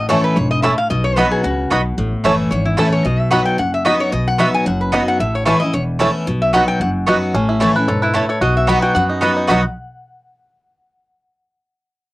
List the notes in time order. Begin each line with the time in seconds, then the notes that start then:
Already playing: A1 A2
0.09 E3 A3 C#4 E4 A4 C#5 A5
0.24 B4
0.36 E1 G#2 C#5
0.51 D#5
0.62 A2 A3 C#4 E4 A4 C#5 E5 A5
0.78 F5
0.90 B1 B2 D#5
1.04 C#5
1.16 F#3 B3 D#4 F#4 B4 D#5 B5
1.31 G#4
1.44 C#2 C#3 F#4
1.70 B1 B2 B3 D#4 F#4 D#5 B5
1.97 A1 A2
2.24 F#1 E3 A3 C#4 E4 A4 C#5 A5
2.51 G#1 E2 C#5
2.65 E4
2.77 A1 E3 A3 C#4 E4 A4 C#5 A5
2.92 C#5
3.05 B1 B2 D#5
3.19 E5
3.31 F#3 B3 D#4 F#4 D#5 F#5 B5
3.45 G5
3.58 F#1 F#2 F#5
3.74 E5
3.85 F#3 B3 D#4 F#4 D#5 B5
4.00 C#5
4.12 B1 B2 D#5
4.28 F#5
4.38 F#3 B3 D#4 F#4 D#5 E5 B5
4.54 G#5
4.66 F#1 F#2 F#5
4.81 B4
4.92 F#3 B3 D#4 F#4 D#5 B5
5.08 F#5
5.20 A1 A2 E5
5.35 C#5
5.45 E3 A3 C#4 E4 A4 B4 C#5 A5
5.60 C#4 E4 D#5
5.73 E1 E2 C#5
5.99 E3 A3 C#4 E4 A4 C#5 A5
6.27 B1 B2
6.42 E5
6.53 F#3 B3 D#4 F#4 D#5 F#5 B5
6.68 G5
6.80 F#1 F#2 F#5
7.07 F#3 B3 D#4 F#4 D#5 B5
7.34 A1 A2 C#4
7.49 E4
7.60 E3 A3 C#4 E4 A4 C#5 A5
7.76 C#4 E4 B4
7.88 E1 G#2 A4 C#5
8.02 E4 B4
8.14 A2 A3 E4 A4 C#5 A5
8.29 A4 C#5
8.41 B1 B2 F#4 D#5
8.57 E5
8.67 F#3 B3 D#4 F#4 D#5 F#5 B5
8.82 F#4 G5
8.95 F#2 B3 F#5
9.10 D#4
9.21 F#3 B3 D#4 F#4 B4 D#5 B5
9.37 D#4
9.48 B1 B2 F#3 B3 D#4 F#4 D#5 F#5 B5
9.53 F#4